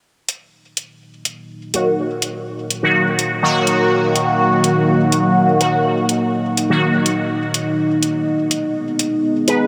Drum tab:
HH |-x-x-x-x|-x-x-x-x|-x-x-x-x|-x-x-x-x|

HH |-x-x-x-x|